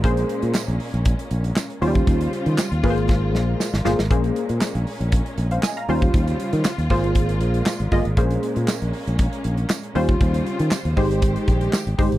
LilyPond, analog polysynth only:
\new Staff \with { instrumentName = "Analog polysynth" } { \time 4/4 \key bes \dorian \tempo 4 = 118 << { r1 | r1 | r2 r8. <c'' f''>16 <ees'' aes''>16 <f'' bes''>8 r16 | r1 |
r1 | r1 | } \\ { <bes des' aes' c''>4 r2 r8 <ges g des' f' c''>8~ | <ges g des' f' c''>4 r8 <bes f' aes' ces'' c''>4. r8 <bes f' aes' c''>8 | <bes des' aes' c''>4 r2 r8 <g des' f' c''>8~ | <g des' f' c''>4 r8 <bes f' aes' c''>4. r8 <bes f' aes' ees''>8 |
<bes des' aes' c''>4 r2 r8 <g des' f' c''>8~ | <g des' f' c''>4 r8 <aes ees' g' c''>4. r8 <aes ees' g' c''>8 | } >> }